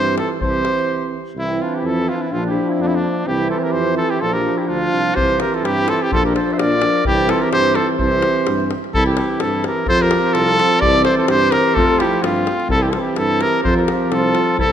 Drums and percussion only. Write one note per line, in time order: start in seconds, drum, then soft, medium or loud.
0.07 davul high soft
0.18 davul high medium
0.41 davul low medium
0.54 davul high soft
0.65 davul high medium
0.79 davul high soft
5.17 davul low medium
5.30 davul high soft
5.40 davul high medium
5.54 davul high soft
5.65 davul high medium
5.78 davul high soft
5.88 davul high medium
6.12 davul low medium
6.26 davul high soft
6.36 davul high medium
6.50 davul high soft
6.59 davul high medium
6.72 davul high soft
6.82 davul high medium
7.05 davul low medium
7.18 davul high soft
7.29 davul high medium
7.42 davul high soft
7.53 davul high medium
7.65 davul high soft
7.75 davul high medium
7.99 davul low medium
8.12 davul high soft
8.22 davul high medium
8.36 davul high soft
8.47 davul high medium
8.60 davul high soft
8.71 davul high medium
8.84 davul high soft
8.94 davul low medium
9.06 davul high soft
9.17 davul high medium
9.40 davul high medium
9.64 davul high medium
9.86 davul low medium
10.01 davul high soft
10.11 davul high medium
10.35 davul high medium
10.59 davul high medium
10.82 davul low medium
10.95 davul high soft
11.05 davul high medium
11.28 davul high medium
11.52 davul high medium
11.77 davul low medium
12.00 davul high medium
12.13 davul high soft
12.24 davul high medium
12.36 davul high soft
12.47 davul high medium
12.60 davul high soft
12.69 davul low medium
12.83 davul high soft
12.93 davul high medium
13.16 davul high medium
13.41 davul high medium
13.65 davul low medium
13.78 davul high soft
13.88 davul high medium
14.12 davul high medium
14.35 davul high medium
14.59 davul low medium